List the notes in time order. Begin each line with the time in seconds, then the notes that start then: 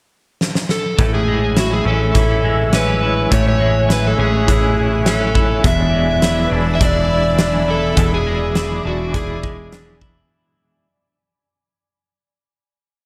0.41 snare
0.55 snare
0.69 A4, snare
0.98 A1 A2 E3 G#3 C#4 E4 C#5 E5 G#5 E6, kick, closed hi-hat
1.15 G#4
1.28 G#3
1.56 E4 F#4, snare, closed hi-hat
1.73 G#4
1.85 A1 C#4 E4 A4
1.90 G#3
2.14 A1 E3 C#4 E4, kick, closed hi-hat
2.20 E4
2.45 G#3
2.72 E3 G#3 C#4 B4, snare, closed hi-hat
2.78 E4
3.03 E4
3.31 A1 A2 E3 G#3 C#4 E4 C#5 F#6, kick, closed hi-hat
3.48 C#5
3.60 G#3
3.89 E4 B4, snare, closed hi-hat
4.07 A4
4.18 A1 C#4 E4 G#4
4.23 G#3
4.47 A1 E3 G#3 E4, kick, closed hi-hat
4.51 C#4 E4
5.05 E3 C#4 A4, snare, closed hi-hat
5.11 E4
5.35 E4, kick
5.63 E1 E2 B2 E3 G#3 D5 E5 B5 E6, kick, closed hi-hat
5.67 D4 E4
5.90 G#3 D5
6.22 E4, snare, closed hi-hat
6.45 B4
6.50 E1 D4 E4 D5
6.54 E3 G#3 E5
6.75 E5
6.79 E1 E3 G#3 D4 E4, kick, closed hi-hat
6.85 E4 D5
7.37 E3 G#3 D4, snare, closed hi-hat
7.42 E4
7.68 E4 A4
7.96 E1 E2 B2 E3 G#3 D4 E4 D6, kick, closed hi-hat
8.14 G#4
8.27 G#3
8.55 E4, snare, closed hi-hat
8.83 E1 G#3 D4 E4 F#4
8.88 E3
9.11 E1 E3 G#3 E4, kick, closed hi-hat
9.15 D4 E4 G#4
9.43 G#3, kick
9.71 E3 G#3 D4, snare, closed hi-hat
9.77 E4
10.01 E4, kick